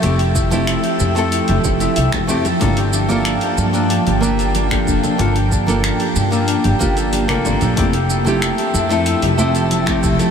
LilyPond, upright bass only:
\new Staff \with { instrumentName = "Upright bass" } { \clef bass \time 4/4 \key f \major \tempo 4 = 93 f,,4 r8 f,8 r16 f,,16 f,,16 r16 c,16 r16 f,16 r16 | g,,4 r8 g,8 r16 g,,4~ g,,16 f,,16 r16 | g,,4 r8 g,8 r16 g,,16 g,,8. r16 g,,16 bes,,16 | f,,4 r8 f,8 r16 f,,4~ f,,16 c,16 r16 | }